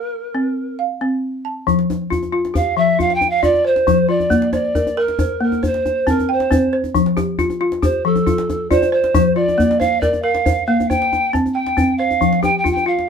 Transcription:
0.00 0.13 A#4 medium
0.00 0.80 A#4 medium
0.00 0.13 E5 medium
0.00 0.35 F5 medium
0.35 0.79 C4 medium
0.79 1.45 F5 medium
1.01 1.45 C4 medium
1.45 1.89 A5 medium
1.67 2.11 F3 medium
1.67 djembe bass medium
1.79 djembe slap soft
1.90 djembe tone medium
2.01 djembe slap soft
2.10 2.31 F4 medium
2.10 djembe bass medium
2.23 djembe tone soft
2.33 2.77 F4 medium
2.45 djembe slap soft
2.54 3.21 G4 medium
2.54 2.78 F5 medium
2.54 djembe tone medium
2.54 djembe bass medium
2.77 3.21 F3 medium
2.77 3.01 E5 medium
2.99 3.42 F4 medium
2.99 3.16 F5 medium
2.99 djembe bass medium
3.10 djembe slap soft
3.14 3.31 G5 medium
3.21 djembe slap soft
3.21 djembe tone medium
3.29 3.45 F5 loud
3.43 3.87 F4 medium
3.43 4.09 D5 medium
3.43 3.67 D5 medium
3.43 djembe bass medium
3.54 djembe tone soft
3.65 4.31 C5 medium
3.65 4.10 C5 medium
3.76 djembe slap soft
3.87 4.31 F3 medium
3.87 djembe tone medium
3.87 djembe bass medium
4.08 4.53 F4 medium
4.08 4.52 D5 medium
4.08 djembe slap soft
4.20 djembe tone soft
4.30 4.75 A#3 medium
4.30 djembe bass medium
4.42 djembe slap soft
4.52 5.18 C5 medium
4.52 4.99 D5 medium
4.52 djembe tone medium
4.64 djembe slap soft
4.75 4.96 A#4 medium
4.75 djembe bass medium
4.87 djembe tone soft
4.97 5.41 A#4 medium
4.97 5.42 A#4 medium
5.08 djembe slap soft
5.19 5.62 C5 medium
5.19 djembe tone medium
5.19 djembe bass medium
5.41 5.63 A#3 medium
5.41 5.66 A#4 medium
5.52 djembe tone medium
5.63 6.29 C5 medium
5.63 6.10 C5 medium
5.63 djembe bass medium
5.74 djembe slap soft
5.86 djembe slap soft
5.86 djembe tone medium
6.07 6.50 C4 medium
6.07 6.30 A#4 medium
6.07 6.73 A5 medium
6.07 djembe bass medium
6.19 djembe tone medium
6.29 6.77 C5 medium
6.29 6.95 G5 medium
6.40 djembe slap medium
6.51 6.95 C4 medium
6.51 djembe tone medium
6.51 djembe bass medium
6.73 7.17 C5 medium
6.73 djembe slap soft
6.84 djembe tone soft
6.95 7.39 F3 medium
6.95 djembe bass medium
7.06 djembe slap soft
7.17 7.81 G4 medium
7.17 djembe tone medium
7.39 7.60 F4 medium
7.39 djembe bass medium
7.50 djembe tone soft
7.61 8.05 F4 medium
7.72 djembe slap soft
7.82 8.49 G4 medium
7.82 8.06 C5 medium
7.82 djembe tone medium
7.82 djembe bass medium
8.05 8.49 F3 medium
8.05 8.71 A4 medium
8.16 djembe tone medium
8.27 8.69 F4 medium
8.27 djembe bass medium
8.38 djembe slap medium
8.50 djembe slap soft
8.50 djembe tone medium
8.70 9.15 F4 medium
8.70 8.92 C5 medium
8.70 9.36 D5 medium
8.70 djembe bass medium
8.82 djembe tone medium
8.92 9.36 C5 medium
8.92 9.58 C5 medium
9.04 djembe slap soft
9.15 9.58 F3 medium
9.15 djembe tone medium
9.15 djembe bass medium
9.35 9.80 F4 medium
9.35 9.81 D5 medium
9.35 djembe slap soft
9.48 djembe tone medium
9.58 10.02 A#3 medium
9.58 djembe bass medium
9.71 djembe slap medium
9.79 10.44 C5 medium
9.79 10.02 F5 medium
9.79 djembe tone medium
10.00 10.22 A#4 medium
10.00 10.23 D5 medium
10.00 djembe slap soft
10.00 djembe bass medium
10.13 djembe tone medium
10.22 10.68 A#4 medium
10.22 10.65 F5 medium
10.22 djembe slap soft
10.35 djembe slap medium
10.45 10.89 C5 soft
10.45 djembe tone medium
10.45 djembe bass medium
10.66 10.90 A#3 medium
10.66 10.90 F5 medium
10.66 djembe slap soft
10.80 djembe slap soft
10.80 djembe tone medium
10.88 11.56 C5 medium
10.88 11.30 G5 loud
10.88 djembe bass medium
11.02 djembe slap soft
11.13 djembe slap soft
11.13 djembe tone medium
11.33 11.76 C4 medium
11.33 11.99 A5 medium
11.33 djembe slap soft
11.33 djembe bass medium
11.46 djembe tone soft
11.53 11.95 G5 medium
11.53 12.21 G5 medium
11.66 djembe slap soft
11.77 12.21 C4 medium
11.77 djembe tone medium
11.77 djembe bass medium
11.97 12.43 C5 medium
11.97 12.44 F5 medium
12.11 djembe tone soft
12.21 12.65 F3 medium
12.21 djembe bass medium
12.33 djembe slap soft
12.42 13.07 G4 medium
12.42 12.57 G5 loud
12.42 djembe tone medium
12.55 12.70 G5 medium
12.55 djembe slap soft
12.64 12.85 F4 medium
12.64 djembe bass medium
12.71 12.88 G5 medium
12.77 djembe tone soft
12.86 13.09 F4 medium
12.86 13.09 F5 medium
12.99 djembe slap soft

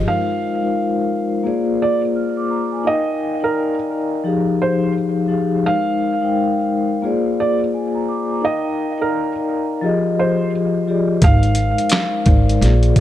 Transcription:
0.05 0.39 G#3 medium
0.05 0.39 D#4 medium
0.05 0.40 F4 medium
0.05 0.40 A#4 medium
0.05 0.40 C5 medium
0.05 1.42 F5 medium
0.62 1.45 G#3 medium
0.62 1.45 D#4 medium
0.62 1.44 F4 medium
0.62 1.46 A#4 medium
0.62 1.45 C5 medium
1.44 2.32 A#3 medium
1.44 2.32 F4 medium
1.44 2.32 G#4 medium
1.44 2.33 C5 medium
1.44 2.33 D5 medium
1.82 2.01 D5 medium
2.16 2.36 F6 soft
2.37 2.49 D6 medium
2.50 2.71 A#5 medium
2.72 3.05 G#5 medium
2.84 3.18 D#4 medium
2.84 3.18 A#4 medium
2.84 3.18 D#5 medium
2.84 3.39 D#5 medium
2.84 3.19 F5 medium
2.84 3.19 G5 medium
3.41 4.23 D#4 medium
3.41 4.24 A#4 medium
3.41 3.74 A#4 medium
3.41 4.25 D5 medium
3.41 4.25 F5 medium
3.41 4.26 A#5 medium
4.24 5.11 F3 medium
4.24 5.12 D#4 medium
4.24 5.12 G4 medium
4.24 5.12 G#4 medium
4.24 5.13 F5 medium
4.62 4.92 C5 medium
5.28 5.54 F3 medium
5.28 5.54 D#4 medium
5.28 5.54 G4 medium
5.28 5.55 G#4 medium
5.28 5.55 F5 medium
5.63 5.97 G#3 medium
5.63 5.97 D#4 medium
5.63 5.98 A#4 medium
5.63 5.98 C5 medium
5.63 7.01 F5 medium
6.21 7.03 G#3 medium
6.21 7.04 D#4 medium
6.21 7.04 A#4 medium
6.21 7.04 C5 medium
6.21 7.05 G5 medium
7.02 7.90 A#3 medium
7.02 7.90 F4 medium
7.02 7.91 G#4 medium
7.02 7.91 C5 medium
7.02 7.92 D5 medium
7.40 7.59 D5 medium
7.74 7.94 G#5 medium
7.95 8.07 A#5 medium
8.09 8.29 D6 medium
8.31 8.63 A#5 medium
8.41 8.75 D#4 medium
8.41 8.76 A#4 medium
8.41 8.76 D#5 medium
8.41 8.97 D#5 medium
8.41 8.77 F5 medium
8.41 8.77 G5 medium
8.99 9.82 D#4 medium
8.99 9.82 A#4 medium
8.99 9.32 A#4 medium
8.99 9.83 D5 medium
8.99 9.83 F5 medium
8.99 9.84 A#5 medium
9.81 10.69 F3 medium
9.81 10.69 F4 medium
9.81 10.70 G4 medium
9.81 10.70 G#4 medium
9.81 10.71 D#5 medium
10.19 10.50 C5 medium
10.87 11.12 F3 medium
10.87 11.12 F4 medium
10.87 11.13 G4 medium
10.87 11.13 G#4 medium
10.87 11.14 D5 medium
11.21 11.70 G#1 medium
11.21 11.88 G#3 medium
11.21 11.89 D#4 medium
11.21 11.89 A#4 medium
11.21 11.90 C5 medium
11.21 12.58 F5 medium
11.21 kick medium
11.21 closed hi-hat medium
11.43 closed hi-hat soft
11.55 closed hi-hat medium
11.78 closed hi-hat soft
11.89 snare loud
11.89 clap medium
11.89 closed hi-hat medium
12.25 12.56 G#1 medium
12.25 12.61 G#3 medium
12.25 12.61 D#4 medium
12.25 12.62 A#4 medium
12.25 12.62 C5 medium
12.25 12.63 D5 medium
12.25 kick medium
12.25 closed hi-hat medium
12.49 closed hi-hat soft
12.61 12.91 A#1 medium
12.61 13.00 A#3 medium
12.61 13.00 F4 medium
12.61 13.00 G#4 medium
12.61 13.00 C5 medium
12.61 13.00 D5 medium
12.61 snare soft
12.61 closed hi-hat medium
12.83 closed hi-hat soft
12.96 kick medium
12.96 closed hi-hat medium

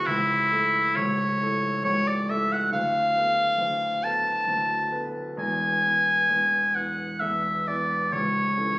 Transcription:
0.06 0.50 C#1 medium
0.06 0.50 C#2 medium
0.06 0.98 E4 loud
0.51 0.94 A3 medium
0.51 0.93 E4 medium
0.51 0.94 A4 medium
0.96 1.40 C#1 medium
0.96 1.40 C#2 medium
0.96 1.84 C#5 loud
1.41 1.82 A3 soft
1.41 1.81 E4 soft
1.41 1.82 A4 medium
1.84 2.27 C#1 medium
1.84 2.28 C#2 medium
1.84 2.09 C#5 loud
2.08 2.31 D5 medium
2.29 2.69 A3 medium
2.29 2.69 E4 medium
2.29 2.69 A4 medium
2.29 2.54 E5 medium
2.53 2.72 F#5 loud
2.72 3.14 D1 medium
2.72 3.14 D2 medium
2.72 4.06 F5 loud
3.16 3.55 A3 medium
3.16 3.56 B3 medium
3.16 3.56 B4 medium
3.58 4.01 D1 medium
3.58 4.02 D2 medium
4.03 4.44 A3 medium
4.03 4.45 B3 medium
4.03 4.45 B4 medium
4.03 5.11 A5 loud
4.47 4.92 D1 medium
4.47 4.92 D2 medium
4.91 5.34 A3 medium
4.91 5.34 B3 medium
4.91 5.34 B4 medium
5.37 5.82 E1 medium
5.37 5.82 E2 medium
5.37 6.77 G#5 loud
5.84 6.26 E3 medium
5.84 6.26 B3 soft
5.84 6.26 B4 medium
6.29 6.74 E1 medium
6.29 6.74 E2 medium
6.75 7.17 E3 soft
6.75 7.18 B3 soft
6.75 7.18 B4 medium
6.75 7.22 F#5 medium
7.20 7.66 E1 medium
7.20 7.66 E2 medium
7.20 7.69 E5 medium
7.67 8.09 E3 medium
7.67 8.10 B3 soft
7.67 8.10 B4 medium
7.67 8.15 D5 medium
8.12 8.56 C#1 medium
8.12 8.56 C#2 medium
8.12 8.79 C#5 medium
8.57 8.79 E3 soft
8.57 8.79 C#4 soft
8.57 8.79 A4 soft

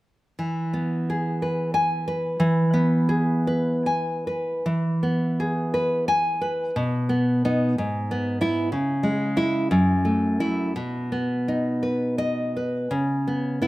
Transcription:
0.39 2.34 E3 medium
0.73 1.76 B3 soft
1.10 2.07 G#4 soft
1.42 1.74 B4 soft
1.74 2.25 G#5 medium
2.08 3.10 B4 medium
2.40 4.63 E3 medium
2.74 3.87 B3 medium
3.09 4.28 G#4 medium
3.47 4.26 B4 medium
3.86 4.67 G#5 medium
4.27 4.66 B4 soft
4.66 6.71 E3 medium
5.03 6.08 B3 soft
5.40 6.43 G#4 soft
5.74 6.08 B4 soft
6.08 6.62 G#5 medium
6.41 6.75 B4 medium
6.76 7.74 B2 medium
7.09 7.44 B3 medium
7.45 7.74 B3 medium
7.45 7.75 D#4 medium
7.78 8.70 G#2 medium
8.11 8.40 B3 medium
8.41 8.69 B3 medium
8.41 8.69 E4 medium
8.72 9.68 C#3 medium
9.03 9.35 G#3 medium
9.37 9.68 G#3 medium
9.37 9.68 E4 medium
9.71 10.73 F#2 medium
10.05 10.40 A3 medium
10.40 10.72 A3 soft
10.40 10.72 E4 medium
10.76 12.87 B2 medium
11.12 12.18 B3 soft
11.48 12.55 D#4 soft
11.83 12.18 B4 soft
12.18 12.76 D#5 medium
12.57 12.92 B4 soft
12.91 13.67 C#3 medium
13.27 13.60 B3 soft
13.62 13.67 B3 soft
13.62 13.67 E4 medium

